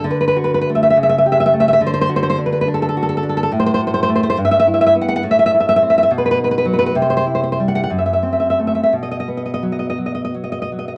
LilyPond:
\new Staff \with { instrumentName = "Nylon-string guitar" } { \time 6/8 \key d \mixolydian \tempo 4. = 69 << { r32 b'32 b'32 b'32 r32 b'32 b'32 b'32 r32 e''32 e''32 e''32 r32 e''32 e''32 e''32 r32 e''32 e''32 e''32 r32 e''32 e''32 e''32 | r32 c''32 c''32 c''32 r32 c''32 c''32 c''32 r32 b'32 b'32 b'32 r32 a'32 a'32 a'32 r32 a'32 a'32 a'32 r32 a'32 a'32 a'32 | \key b \phrygian r32 c''32 c''32 c''32 r32 c''32 c''32 c''32 r32 c''32 c''32 c''32 r32 e''32 e''32 e''32 r32 e''32 e''32 e''32 r32 fis''32 fis''32 fis''32 | r32 e''32 e''32 e''32 r32 e''32 e''32 e''32 r32 e''32 e''32 e''32 r32 b'32 b'32 b'32 r32 b'32 b'32 b'32 r32 b'32 b'32 b'32 |
r32 c''32 c''32 c''32 r32 c''32 c''32 c''32 r32 fis''32 fis''32 fis''32 r32 e''32 e''32 e''32 r32 e''32 e''32 e''32 r32 e''32 e''32 e''32 | r32 dis''32 dis''32 dis''32 r32 dis''32 dis''32 dis''32 r32 dis''32 dis''32 dis''32 r32 dis''32 dis''32 dis''32 r32 dis''32 dis''32 dis''32 r32 dis''32 dis''32 r32 | } \\ { d8 fis'8 a8 cis8 g'8 a8 | d8 fis'8 d'8 d'8 fis'8 d'8 | a,8 fis'8 a8 g,8 e'8 b8 | a,8 e'8 c'8 b,8 dis'8 fis8 |
c8 e'8 g8 fis,8 c'8 a8 | b,8 b8 fis8 fis8 fis8 fis8 | } >> }